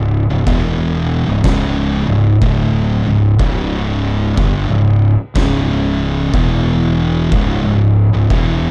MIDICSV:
0, 0, Header, 1, 4, 480
1, 0, Start_track
1, 0, Tempo, 980392
1, 1667, Time_signature, 4, 2, 24, 8
1, 4264, End_track
2, 0, Start_track
2, 0, Title_t, "Distorted electric guitar"
2, 0, Program_c, 0, 30
2, 0, Note_on_c, 0, 37, 68
2, 0, Note_on_c, 0, 44, 80
2, 110, Note_off_c, 0, 37, 0
2, 110, Note_off_c, 0, 44, 0
2, 147, Note_on_c, 0, 37, 65
2, 149, Note_on_c, 0, 44, 68
2, 226, Note_off_c, 0, 37, 0
2, 228, Note_on_c, 0, 40, 91
2, 230, Note_off_c, 0, 44, 0
2, 232, Note_on_c, 0, 47, 98
2, 235, Note_on_c, 0, 52, 102
2, 617, Note_off_c, 0, 40, 0
2, 619, Note_off_c, 0, 47, 0
2, 621, Note_off_c, 0, 52, 0
2, 622, Note_on_c, 0, 37, 72
2, 624, Note_on_c, 0, 44, 77
2, 699, Note_off_c, 0, 37, 0
2, 703, Note_off_c, 0, 44, 0
2, 705, Note_on_c, 0, 37, 92
2, 708, Note_on_c, 0, 44, 89
2, 713, Note_on_c, 0, 49, 106
2, 1006, Note_off_c, 0, 37, 0
2, 1008, Note_off_c, 0, 44, 0
2, 1010, Note_off_c, 0, 49, 0
2, 1014, Note_on_c, 0, 37, 62
2, 1015, Note_on_c, 0, 44, 64
2, 1152, Note_off_c, 0, 37, 0
2, 1153, Note_off_c, 0, 44, 0
2, 1182, Note_on_c, 0, 38, 95
2, 1184, Note_on_c, 0, 45, 108
2, 1188, Note_on_c, 0, 50, 118
2, 1484, Note_off_c, 0, 38, 0
2, 1486, Note_off_c, 0, 45, 0
2, 1487, Note_off_c, 0, 50, 0
2, 1494, Note_on_c, 0, 37, 62
2, 1497, Note_on_c, 0, 44, 71
2, 1632, Note_off_c, 0, 37, 0
2, 1633, Note_off_c, 0, 44, 0
2, 1661, Note_on_c, 0, 37, 88
2, 1663, Note_on_c, 0, 44, 98
2, 1668, Note_on_c, 0, 49, 99
2, 2138, Note_off_c, 0, 37, 0
2, 2140, Note_off_c, 0, 44, 0
2, 2141, Note_on_c, 0, 43, 97
2, 2142, Note_off_c, 0, 49, 0
2, 2146, Note_on_c, 0, 50, 99
2, 2289, Note_off_c, 0, 43, 0
2, 2291, Note_off_c, 0, 50, 0
2, 2293, Note_on_c, 0, 37, 68
2, 2293, Note_on_c, 0, 44, 73
2, 2503, Note_off_c, 0, 37, 0
2, 2503, Note_off_c, 0, 44, 0
2, 2618, Note_on_c, 0, 37, 97
2, 2622, Note_on_c, 0, 44, 104
2, 2627, Note_on_c, 0, 49, 99
2, 3098, Note_off_c, 0, 37, 0
2, 3100, Note_off_c, 0, 44, 0
2, 3102, Note_off_c, 0, 49, 0
2, 3102, Note_on_c, 0, 40, 101
2, 3106, Note_on_c, 0, 47, 100
2, 3110, Note_on_c, 0, 52, 106
2, 3580, Note_off_c, 0, 40, 0
2, 3582, Note_off_c, 0, 47, 0
2, 3583, Note_on_c, 0, 37, 89
2, 3584, Note_off_c, 0, 52, 0
2, 3586, Note_on_c, 0, 44, 101
2, 3731, Note_off_c, 0, 37, 0
2, 3733, Note_off_c, 0, 44, 0
2, 3742, Note_on_c, 0, 37, 63
2, 3744, Note_on_c, 0, 44, 75
2, 3949, Note_off_c, 0, 37, 0
2, 3950, Note_off_c, 0, 44, 0
2, 3983, Note_on_c, 0, 37, 66
2, 3984, Note_on_c, 0, 44, 69
2, 4063, Note_off_c, 0, 37, 0
2, 4065, Note_on_c, 0, 40, 92
2, 4067, Note_off_c, 0, 44, 0
2, 4069, Note_on_c, 0, 47, 96
2, 4073, Note_on_c, 0, 52, 113
2, 4264, Note_off_c, 0, 40, 0
2, 4264, Note_off_c, 0, 47, 0
2, 4264, Note_off_c, 0, 52, 0
2, 4264, End_track
3, 0, Start_track
3, 0, Title_t, "Fingered electric bass"
3, 0, Program_c, 1, 33
3, 0, Note_on_c, 1, 25, 80
3, 129, Note_off_c, 1, 25, 0
3, 146, Note_on_c, 1, 25, 79
3, 225, Note_off_c, 1, 25, 0
3, 228, Note_on_c, 1, 28, 104
3, 603, Note_off_c, 1, 28, 0
3, 627, Note_on_c, 1, 25, 78
3, 703, Note_off_c, 1, 25, 0
3, 706, Note_on_c, 1, 25, 97
3, 996, Note_off_c, 1, 25, 0
3, 1020, Note_on_c, 1, 25, 88
3, 1177, Note_off_c, 1, 25, 0
3, 1184, Note_on_c, 1, 26, 91
3, 1475, Note_off_c, 1, 26, 0
3, 1499, Note_on_c, 1, 25, 75
3, 1657, Note_off_c, 1, 25, 0
3, 1660, Note_on_c, 1, 25, 95
3, 2124, Note_off_c, 1, 25, 0
3, 2141, Note_on_c, 1, 31, 100
3, 2287, Note_off_c, 1, 31, 0
3, 2301, Note_on_c, 1, 25, 77
3, 2524, Note_off_c, 1, 25, 0
3, 2622, Note_on_c, 1, 25, 95
3, 3085, Note_off_c, 1, 25, 0
3, 3102, Note_on_c, 1, 28, 92
3, 3566, Note_off_c, 1, 28, 0
3, 3583, Note_on_c, 1, 25, 94
3, 3729, Note_off_c, 1, 25, 0
3, 3737, Note_on_c, 1, 25, 83
3, 3964, Note_off_c, 1, 25, 0
3, 3983, Note_on_c, 1, 25, 74
3, 4062, Note_off_c, 1, 25, 0
3, 4065, Note_on_c, 1, 28, 99
3, 4264, Note_off_c, 1, 28, 0
3, 4264, End_track
4, 0, Start_track
4, 0, Title_t, "Drums"
4, 229, Note_on_c, 9, 36, 93
4, 231, Note_on_c, 9, 49, 59
4, 278, Note_off_c, 9, 36, 0
4, 280, Note_off_c, 9, 49, 0
4, 706, Note_on_c, 9, 36, 106
4, 706, Note_on_c, 9, 49, 57
4, 711, Note_on_c, 9, 38, 108
4, 755, Note_off_c, 9, 36, 0
4, 755, Note_off_c, 9, 49, 0
4, 760, Note_off_c, 9, 38, 0
4, 1183, Note_on_c, 9, 36, 102
4, 1183, Note_on_c, 9, 49, 59
4, 1232, Note_off_c, 9, 36, 0
4, 1232, Note_off_c, 9, 49, 0
4, 1661, Note_on_c, 9, 49, 55
4, 1662, Note_on_c, 9, 36, 98
4, 1710, Note_off_c, 9, 49, 0
4, 1711, Note_off_c, 9, 36, 0
4, 2142, Note_on_c, 9, 36, 105
4, 2142, Note_on_c, 9, 49, 51
4, 2191, Note_off_c, 9, 36, 0
4, 2191, Note_off_c, 9, 49, 0
4, 2622, Note_on_c, 9, 36, 108
4, 2623, Note_on_c, 9, 49, 58
4, 2628, Note_on_c, 9, 38, 117
4, 2671, Note_off_c, 9, 36, 0
4, 2672, Note_off_c, 9, 49, 0
4, 2677, Note_off_c, 9, 38, 0
4, 3102, Note_on_c, 9, 36, 106
4, 3104, Note_on_c, 9, 49, 55
4, 3151, Note_off_c, 9, 36, 0
4, 3153, Note_off_c, 9, 49, 0
4, 3584, Note_on_c, 9, 36, 104
4, 3585, Note_on_c, 9, 49, 53
4, 3633, Note_off_c, 9, 36, 0
4, 3634, Note_off_c, 9, 49, 0
4, 4064, Note_on_c, 9, 49, 56
4, 4065, Note_on_c, 9, 36, 101
4, 4113, Note_off_c, 9, 49, 0
4, 4114, Note_off_c, 9, 36, 0
4, 4264, End_track
0, 0, End_of_file